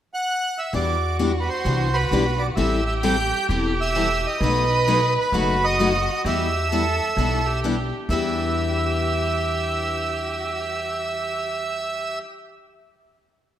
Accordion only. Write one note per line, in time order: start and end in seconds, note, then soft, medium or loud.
0.14 0.60 F#5 medium
0.58 0.73 E5 medium
0.75 1.17 D5 medium
1.40 1.49 B4 medium
1.49 1.96 C5 medium
1.94 2.42 B4 medium
2.39 2.47 D5 medium
2.56 2.84 E5 medium
2.86 2.94 E5 medium
3.03 3.46 G5 medium
3.81 4.27 E5 loud
4.26 5.14 D#5 medium
5.20 5.65 B4 medium
5.64 6.22 D#5 medium
6.27 7.60 E5 medium
8.10 12.19 E5 medium